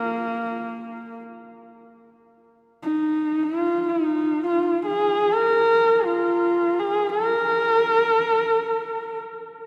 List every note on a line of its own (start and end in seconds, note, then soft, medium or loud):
0.00 1.22 A#3 medium
2.83 3.44 D#4 medium
3.43 3.90 F4 medium
3.89 4.43 D#4 medium
4.44 4.84 F4 medium
4.86 5.35 G#4 medium
5.33 6.07 A#4 medium
6.05 6.81 F4 medium
6.80 7.11 G#4 medium
7.10 9.20 A#4 medium